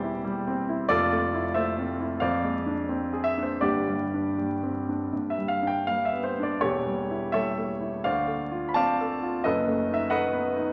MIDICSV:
0, 0, Header, 1, 2, 480
1, 0, Start_track
1, 0, Tempo, 662983
1, 641, Time_signature, 4, 2, 24, 8
1, 2094, Tempo, 748130
1, 4494, Tempo, 709220
1, 5934, Tempo, 673401
1, 7336, End_track
2, 0, Start_track
2, 0, Title_t, "Grand piano"
2, 0, Program_c, 0, 0
2, 0, Control_c, 0, 64, 127
2, 0, Note_on_c, 0, 28, 65
2, 0, Note_on_c, 0, 40, 61
2, 0, Note_on_c, 0, 55, 54
2, 0, Note_on_c, 0, 60, 53
2, 0, Note_on_c, 0, 64, 65
2, 0, Note_on_c, 0, 67, 71
2, 0, Note_on_c, 0, 72, 90
2, 0, Note_on_c, 0, 74, 88
2, 0, Note_on_c, 0, 76, 89
2, 22, Note_off_c, 0, 64, 0
2, 22, Note_on_c, 0, 64, 60
2, 111, Note_off_c, 0, 55, 0
2, 176, Note_on_c, 0, 55, 64
2, 268, Note_off_c, 0, 64, 0
2, 343, Note_off_c, 0, 60, 0
2, 343, Note_on_c, 0, 60, 64
2, 423, Note_off_c, 0, 55, 0
2, 498, Note_on_c, 0, 64, 65
2, 586, Note_off_c, 0, 60, 0
2, 613, Note_off_c, 0, 67, 0
2, 616, Note_off_c, 0, 40, 0
2, 639, Note_off_c, 0, 72, 0
2, 641, Note_off_c, 0, 74, 0
2, 641, Note_on_c, 0, 74, 105
2, 643, Note_on_c, 0, 29, 67
2, 649, Note_off_c, 0, 64, 0
2, 651, Note_on_c, 0, 41, 72
2, 651, Note_on_c, 0, 65, 88
2, 653, Note_on_c, 0, 69, 83
2, 655, Control_c, 0, 64, 0
2, 657, Note_off_c, 0, 28, 0
2, 660, Note_off_c, 0, 76, 0
2, 789, Control_c, 0, 64, 127
2, 809, Note_on_c, 0, 57, 64
2, 970, Note_on_c, 0, 64, 62
2, 1062, Note_off_c, 0, 57, 0
2, 1097, Note_off_c, 0, 65, 0
2, 1098, Note_off_c, 0, 69, 0
2, 1117, Note_on_c, 0, 76, 87
2, 1122, Note_off_c, 0, 74, 0
2, 1122, Note_on_c, 0, 57, 61
2, 1124, Note_on_c, 0, 69, 70
2, 1124, Note_on_c, 0, 72, 71
2, 1221, Note_off_c, 0, 64, 0
2, 1289, Note_on_c, 0, 60, 60
2, 1377, Note_off_c, 0, 57, 0
2, 1451, Note_on_c, 0, 64, 55
2, 1541, Note_off_c, 0, 60, 0
2, 1573, Note_off_c, 0, 29, 0
2, 1573, Note_off_c, 0, 69, 0
2, 1573, Note_off_c, 0, 72, 0
2, 1577, Note_off_c, 0, 41, 0
2, 1594, Note_on_c, 0, 77, 87
2, 1599, Note_off_c, 0, 76, 0
2, 1601, Note_on_c, 0, 72, 67
2, 1604, Note_on_c, 0, 74, 73
2, 1605, Note_on_c, 0, 41, 71
2, 1606, Note_off_c, 0, 64, 0
2, 1612, Control_c, 0, 64, 0
2, 1724, Control_c, 0, 64, 127
2, 1763, Note_on_c, 0, 56, 48
2, 1928, Note_on_c, 0, 62, 59
2, 2028, Note_off_c, 0, 56, 0
2, 2090, Note_on_c, 0, 60, 62
2, 2185, Note_off_c, 0, 62, 0
2, 2245, Note_on_c, 0, 68, 61
2, 2298, Note_off_c, 0, 72, 0
2, 2299, Note_off_c, 0, 74, 0
2, 2316, Note_on_c, 0, 76, 95
2, 2320, Note_off_c, 0, 77, 0
2, 2337, Note_off_c, 0, 60, 0
2, 2405, Note_on_c, 0, 62, 54
2, 2436, Note_on_c, 0, 72, 70
2, 2438, Note_off_c, 0, 76, 0
2, 2497, Note_off_c, 0, 68, 0
2, 2540, Note_off_c, 0, 41, 0
2, 2553, Note_on_c, 0, 74, 82
2, 2556, Note_on_c, 0, 31, 58
2, 2559, Note_on_c, 0, 67, 72
2, 2561, Note_off_c, 0, 72, 0
2, 2562, Note_on_c, 0, 43, 68
2, 2565, Note_off_c, 0, 62, 0
2, 2577, Control_c, 0, 64, 0
2, 2680, Control_c, 0, 64, 127
2, 2722, Note_on_c, 0, 55, 53
2, 2895, Note_on_c, 0, 62, 53
2, 2985, Note_off_c, 0, 55, 0
2, 3051, Note_on_c, 0, 55, 53
2, 3150, Note_off_c, 0, 62, 0
2, 3210, Note_on_c, 0, 60, 50
2, 3309, Note_off_c, 0, 55, 0
2, 3374, Note_on_c, 0, 62, 51
2, 3469, Note_off_c, 0, 60, 0
2, 3506, Note_off_c, 0, 31, 0
2, 3509, Note_off_c, 0, 43, 0
2, 3529, Note_on_c, 0, 43, 53
2, 3536, Note_off_c, 0, 62, 0
2, 3549, Control_c, 0, 64, 0
2, 3629, Note_off_c, 0, 67, 0
2, 3640, Note_on_c, 0, 76, 70
2, 3651, Note_off_c, 0, 74, 0
2, 3652, Control_c, 0, 64, 127
2, 3691, Note_on_c, 0, 55, 47
2, 3756, Note_on_c, 0, 77, 81
2, 3769, Note_off_c, 0, 76, 0
2, 3847, Note_on_c, 0, 62, 53
2, 3878, Note_on_c, 0, 79, 72
2, 3888, Note_off_c, 0, 77, 0
2, 3951, Note_off_c, 0, 55, 0
2, 4005, Note_on_c, 0, 77, 93
2, 4008, Note_off_c, 0, 79, 0
2, 4010, Note_on_c, 0, 55, 52
2, 4110, Note_off_c, 0, 62, 0
2, 4122, Note_on_c, 0, 76, 77
2, 4132, Note_off_c, 0, 77, 0
2, 4171, Note_on_c, 0, 59, 53
2, 4240, Note_on_c, 0, 72, 77
2, 4251, Note_off_c, 0, 76, 0
2, 4272, Note_off_c, 0, 55, 0
2, 4342, Note_on_c, 0, 62, 53
2, 4364, Note_on_c, 0, 74, 70
2, 4369, Note_off_c, 0, 72, 0
2, 4430, Note_off_c, 0, 59, 0
2, 4467, Note_off_c, 0, 43, 0
2, 4477, Note_on_c, 0, 28, 63
2, 4479, Note_on_c, 0, 73, 85
2, 4482, Note_on_c, 0, 69, 62
2, 4484, Note_on_c, 0, 40, 63
2, 4484, Note_on_c, 0, 67, 65
2, 4488, Note_off_c, 0, 74, 0
2, 4497, Note_off_c, 0, 62, 0
2, 4510, Control_c, 0, 64, 0
2, 4612, Control_c, 0, 64, 127
2, 4648, Note_on_c, 0, 55, 52
2, 4810, Note_on_c, 0, 64, 54
2, 4912, Note_off_c, 0, 55, 0
2, 4946, Note_off_c, 0, 69, 0
2, 4948, Note_off_c, 0, 67, 0
2, 4960, Note_off_c, 0, 73, 0
2, 4961, Note_on_c, 0, 76, 93
2, 4969, Note_on_c, 0, 55, 55
2, 4970, Note_on_c, 0, 73, 66
2, 4972, Note_on_c, 0, 69, 69
2, 5072, Note_off_c, 0, 64, 0
2, 5133, Note_on_c, 0, 57, 55
2, 5229, Note_off_c, 0, 55, 0
2, 5289, Note_on_c, 0, 64, 53
2, 5388, Note_off_c, 0, 57, 0
2, 5417, Note_off_c, 0, 28, 0
2, 5421, Note_off_c, 0, 40, 0
2, 5422, Note_off_c, 0, 73, 0
2, 5423, Note_off_c, 0, 69, 0
2, 5444, Note_off_c, 0, 76, 0
2, 5448, Note_on_c, 0, 77, 88
2, 5450, Note_off_c, 0, 64, 0
2, 5451, Note_on_c, 0, 72, 63
2, 5452, Note_on_c, 0, 74, 62
2, 5455, Note_on_c, 0, 38, 68
2, 5464, Control_c, 0, 64, 0
2, 5578, Control_c, 0, 64, 127
2, 5602, Note_on_c, 0, 57, 53
2, 5768, Note_on_c, 0, 65, 58
2, 5858, Note_off_c, 0, 72, 0
2, 5858, Note_off_c, 0, 74, 0
2, 5865, Note_off_c, 0, 57, 0
2, 5883, Note_off_c, 0, 77, 0
2, 5883, Note_on_c, 0, 83, 63
2, 5922, Note_on_c, 0, 81, 99
2, 5932, Note_on_c, 0, 60, 62
2, 5932, Note_on_c, 0, 74, 78
2, 5933, Note_off_c, 0, 83, 0
2, 5935, Note_on_c, 0, 77, 77
2, 6032, Note_off_c, 0, 65, 0
2, 6110, Note_on_c, 0, 69, 64
2, 6200, Note_off_c, 0, 60, 0
2, 6265, Note_on_c, 0, 65, 65
2, 6367, Note_off_c, 0, 69, 0
2, 6397, Note_off_c, 0, 74, 0
2, 6399, Note_off_c, 0, 38, 0
2, 6399, Note_off_c, 0, 77, 0
2, 6418, Note_on_c, 0, 75, 89
2, 6421, Note_off_c, 0, 81, 0
2, 6423, Note_on_c, 0, 30, 65
2, 6426, Note_off_c, 0, 65, 0
2, 6426, Note_on_c, 0, 71, 70
2, 6427, Note_on_c, 0, 69, 72
2, 6429, Note_on_c, 0, 42, 75
2, 6440, Control_c, 0, 64, 0
2, 6534, Control_c, 0, 64, 127
2, 6589, Note_on_c, 0, 57, 61
2, 6739, Note_on_c, 0, 63, 55
2, 6754, Note_off_c, 0, 69, 0
2, 6754, Note_off_c, 0, 71, 0
2, 6773, Note_on_c, 0, 76, 90
2, 6774, Note_off_c, 0, 75, 0
2, 6836, Note_off_c, 0, 57, 0
2, 6888, Note_on_c, 0, 78, 96
2, 6892, Note_on_c, 0, 57, 65
2, 6892, Note_on_c, 0, 75, 81
2, 6893, Note_off_c, 0, 76, 0
2, 6893, Note_on_c, 0, 71, 80
2, 6991, Note_off_c, 0, 63, 0
2, 7054, Note_on_c, 0, 59, 60
2, 7149, Note_off_c, 0, 57, 0
2, 7217, Note_on_c, 0, 63, 62
2, 7310, Note_off_c, 0, 59, 0
2, 7336, Note_off_c, 0, 30, 0
2, 7336, Note_off_c, 0, 42, 0
2, 7336, Note_off_c, 0, 63, 0
2, 7336, Note_off_c, 0, 71, 0
2, 7336, Note_off_c, 0, 75, 0
2, 7336, Note_off_c, 0, 78, 0
2, 7336, End_track
0, 0, End_of_file